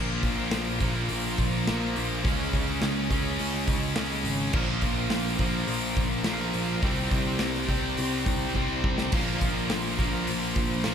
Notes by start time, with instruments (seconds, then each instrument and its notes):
Already playing: picked electric bass A#1, overdriven electric guitar A#2 F3 A#3, tonewheel organ A#3 F4 C5
0.23 picked electric bass A#1, kick, open hi-hat
0.51 picked electric bass A#1, snare, open hi-hat
0.80 picked electric bass A#1, overdriven electric guitar F3 A#3, kick, open hi-hat
0.84 overdriven electric guitar A#2
1.09 picked electric bass A#1, open hi-hat
1.38 picked electric bass A#1, kick, open hi-hat
1.67 picked electric bass A#1, overdriven electric guitar A#2 F3 A#3, snare, open hi-hat
1.96 picked electric bass A#1, open hi-hat
2.24 picked electric bass C#2, overdriven electric guitar C#3 G#3 C#4, tonewheel organ C#4 G#4 D#5, kick, open hi-hat
2.53 picked electric bass C#2, kick, open hi-hat
2.82 picked electric bass C#2, snare, open hi-hat
3.10 picked electric bass C#2, overdriven electric guitar G#3 C#4, kick, open hi-hat
3.14 overdriven electric guitar C#3
3.39 picked electric bass C#2, open hi-hat
3.67 picked electric bass C#2, kick, open hi-hat
3.96 picked electric bass C#2, overdriven electric guitar C#3 G#3 C#4, snare, open hi-hat
4.24 picked electric bass G#1, open hi-hat
4.53 picked electric bass A#1, overdriven electric guitar A#2 F3 A#3, tonewheel organ A#3 F4 C5, kick, crash
4.81 picked electric bass A#1, kick, open hi-hat
5.10 picked electric bass A#1, snare, open hi-hat
5.38 picked electric bass A#1, overdriven electric guitar A#2 F3 A#3, kick, open hi-hat
5.68 picked electric bass A#1, open hi-hat
5.96 picked electric bass A#1, kick, open hi-hat
6.24 picked electric bass A#1, overdriven electric guitar A#2 F3 A#3, snare, open hi-hat
6.53 picked electric bass A#1, open hi-hat
6.82 picked electric bass C2, overdriven electric guitar C3 G3 C4, tonewheel organ C4 G4, kick, open hi-hat
7.11 picked electric bass C2, kick, open hi-hat
7.39 picked electric bass C2, snare, open hi-hat
7.68 picked electric bass C2, overdriven electric guitar C3 G3 C4, kick, open hi-hat
7.97 picked electric bass C2, open hi-hat
8.26 picked electric bass C2, kick, open hi-hat
8.55 picked electric bass C2, overdriven electric guitar C3 G3 C4, kick
8.84 picked electric bass C2, kick
8.98 snare
9.11 picked electric bass A#1, overdriven electric guitar A#2 F3 A#3, tonewheel organ A#3 F4 C5, kick, open hi-hat, crash
9.41 picked electric bass A#1, kick, open hi-hat
9.70 picked electric bass A#1, snare, open hi-hat
9.98 picked electric bass A#1, overdriven electric guitar A#2 F3 A#3, kick, open hi-hat
10.27 picked electric bass A#1, open hi-hat
10.55 picked electric bass A#1, kick, open hi-hat
10.84 picked electric bass A#1, overdriven electric guitar A#2 F3 A#3, snare, open hi-hat